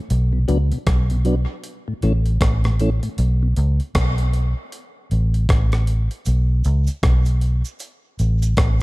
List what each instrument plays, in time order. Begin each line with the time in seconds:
0.10 fingered electric bass B1, closed hi-hat
0.33 tonewheel organ B2
0.48 fingered electric bass C#2, tonewheel organ F#3 B3 D4, closed hi-hat
0.72 tonewheel organ B2, closed hi-hat
0.87 fingered electric bass B1, kick, cross-stick, closed hi-hat
1.10 tonewheel organ B2, closed hi-hat
1.25 tonewheel organ F#3 B3 D4, closed hi-hat
1.64 closed hi-hat
1.88 tonewheel organ A2
2.02 fingered electric bass A1, tonewheel organ E3 A3 C#4, closed hi-hat
2.26 closed hi-hat
2.41 fingered electric bass A1, kick, cross-stick, closed hi-hat
2.64 tonewheel organ A2, cross-stick, closed hi-hat
2.80 tonewheel organ E3 A3 C#4, closed hi-hat
3.03 tonewheel organ A2, closed hi-hat
3.18 fingered electric bass B1, closed hi-hat
3.43 tonewheel organ B2
3.56 fingered electric bass C#2, closed hi-hat
3.80 closed hi-hat
3.95 fingered electric bass B1, kick, cross-stick, closed hi-hat
4.18 closed hi-hat
4.33 closed hi-hat
4.72 closed hi-hat
5.11 fingered electric bass A1, closed hi-hat
5.34 closed hi-hat
5.49 fingered electric bass A1, kick, cross-stick, closed hi-hat
5.72 cross-stick, closed hi-hat
5.87 closed hi-hat
6.11 closed hi-hat
6.25 fingered electric bass B1, closed hi-hat, cabasa
6.64 fingered electric bass C#2, closed hi-hat, cabasa
6.87 closed hi-hat, cabasa
7.03 fingered electric bass B1, kick, cross-stick, closed hi-hat
7.25 closed hi-hat, cabasa
7.41 closed hi-hat
7.65 cabasa
7.80 closed hi-hat, cabasa
8.19 fingered electric bass A1, closed hi-hat, cabasa
8.42 closed hi-hat, cabasa
8.57 fingered electric bass A1, kick, cross-stick, closed hi-hat